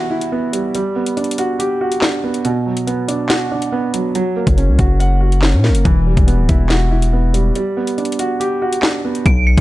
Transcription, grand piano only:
Already playing: E3 G3 B3 E4 F#4
0.10 E4
0.32 B3
0.53 G3
0.75 G3
0.96 B3
1.17 D4
1.38 F#4
1.59 G4
1.81 F#4
2.02 D4
2.24 B3
2.45 B2
2.66 F#3
2.87 B3
3.08 D4
3.29 F#4
3.51 D4
3.72 B3
3.94 F#3
4.15 F#3
4.36 A#3
4.57 C#4
4.78 F#4
5.00 F#5
5.21 F#4
5.43 C#4
5.64 A#3
5.85 E3
6.07 G3
6.27 B3
6.49 E4
6.70 F#4
6.91 E4
7.13 B3
7.34 G3
7.56 G3
7.77 B3
7.98 D4
8.19 F#4
8.40 G4
8.62 F#4
8.83 D4
9.05 B3

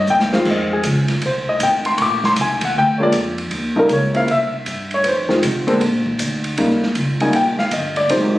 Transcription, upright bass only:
0.07 D#2
0.46 F2
0.84 C#2
1.22 C2
1.60 G#1
1.98 A#1
2.37 C2
2.75 D2
3.13 F2
3.51 D#2
3.90 C#2
4.28 C2
4.66 G2
5.04 F2
5.43 C3
5.67 muted upright bass stroke
5.81 A#2
6.19 D2
6.58 D#2
6.96 C#2
7.34 A#1
7.72 G1
8.10 G#1

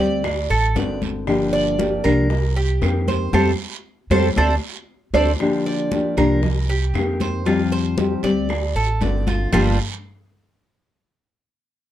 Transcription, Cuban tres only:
Already playing: D5
0.50 A4
0.76 D5
1.53 D5
2.04 A#4
2.56 G4
3.08 C5
3.33 G4 A4 C5
4.11 G4 A4 C5
4.38 A4 C5 D5
5.14 A4 C5 D5
5.66 D5
6.18 A#4
6.69 G4
7.21 C5
7.46 F4
7.72 C5
8.24 D5
8.76 A4
9.02 D5
9.27 F4
9.53 G3 D4 F4

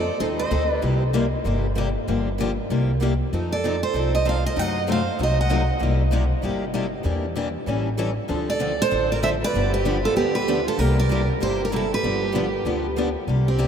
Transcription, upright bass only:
0.20 D#2
0.51 D2
0.82 C2
1.45 G1
2.08 G1
2.70 C2
3.33 F2
3.94 C2
4.57 F#2
5.19 C2
5.81 C2
6.43 G1
7.04 E2
7.67 A1
8.29 D2
8.91 A1
9.54 G1
10.16 D2
10.78 C2
11.41 G1
12.03 G1
12.65 D2
13.27 C2

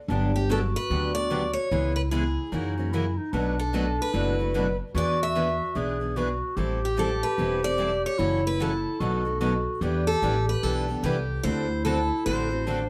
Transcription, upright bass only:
0.08 G1
0.90 D2
1.71 C#2
2.52 F#2
3.33 B1
4.14 F#1
4.94 E2
5.76 B1
6.57 A1
7.38 E1
8.19 F#1
9.00 B1
9.81 E2
10.22 A1
10.63 B1
11.03 C2
11.44 D2
12.26 A1

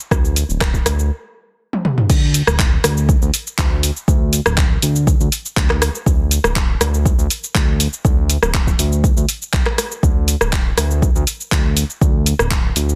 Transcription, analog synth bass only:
0.11 D2
0.49 D1
0.86 D2
2.10 D2
2.47 D1
2.84 D2
3.22 D2
3.58 D2
4.08 D2
4.46 D1
4.83 D2
5.20 D2
5.57 D2
6.06 D2
6.44 D1
6.81 D2
7.18 D2
7.55 D2
8.05 D2
8.42 D1
8.79 D2
9.17 D2
9.53 C2
10.03 D2
10.41 D1
10.78 D2
11.15 D2
11.52 D2
12.01 D2
12.39 D1
12.76 D2

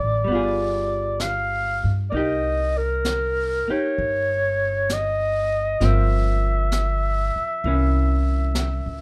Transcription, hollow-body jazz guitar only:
Already playing: D3 F3 C4 E4
0.24 G3 B3
0.32 F4 G#4
2.12 A#3 D#4
2.17 G4
3.68 A#3 D#4 G4
5.80 F3 A#3 C4
7.66 E3 A#3 C#4

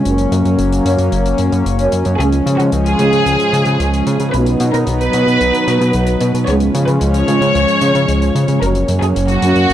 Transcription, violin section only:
2.19 G#4
2.59 F#4
2.86 G#4
4.33 B4
4.74 A#4
5.00 B4
6.48 C#5
6.88 B4
7.15 C#5
8.62 A#4
9.02 G#4
9.29 F#4

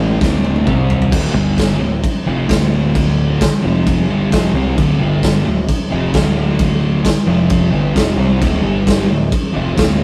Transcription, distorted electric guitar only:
Already playing: A2 E3 A3
0.20 D2 A2 D3
0.66 C3 G3 C4
1.11 D2 A2 D3
1.33 G2 D3 G3
1.80 D2 A2
2.26 F2 C3 F3
2.47 D2 A2 D3
3.41 muted distorted electric guitar stroke
3.62 F2 C3 F3
4.08 G2 D3 G3
4.31 F2 C3 F3
4.54 C3 G3 C4
4.76 D2 A2 D3
5.00 G2 D3 G3
5.45 D2 A2
5.90 F2 C3 F3
6.13 D2 A2 D3
7.05 muted distorted electric guitar stroke
7.26 F2 C3 F3
7.73 G2 D3 G3
7.94 F2 C3 F3
8.17 C3 G3 C4
8.39 D2 A2 D3
8.62 G2 D3 G3
9.07 D2 A2
9.53 F2 C3 F3
9.75 D2 A2 D3

